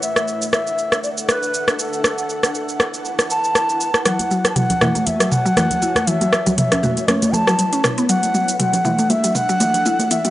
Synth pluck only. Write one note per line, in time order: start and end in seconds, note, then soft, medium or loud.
4.06 4.19 F#3 medium
4.31 4.44 F#3 medium
4.56 4.69 F#3 medium
4.81 4.95 E3 loud
4.95 5.06 A3 medium
5.20 5.31 F#3 medium
5.45 5.52 F#3 loud
5.57 5.70 E3 medium
5.82 5.95 E4 medium
6.07 6.20 E3 medium
6.21 6.32 F#3 medium
6.47 6.53 F#3 loud
6.72 6.82 C#4 medium
6.83 6.96 F#4 medium
7.08 7.16 C#4 loud
7.34 7.46 A3 medium
7.47 7.54 F#3 loud
7.73 7.83 C#4 medium
7.98 8.09 B3 loud
8.09 8.22 F#3 medium
8.34 8.47 F#3 medium
8.59 8.72 F#3 medium
8.85 8.98 E3 loud
8.99 9.10 A3 medium
9.24 9.34 F#3 medium
9.49 9.55 F#3 loud
9.61 9.73 E3 medium
9.86 9.98 E4 medium
10.11 10.24 E3 medium
10.25 10.30 F#3 medium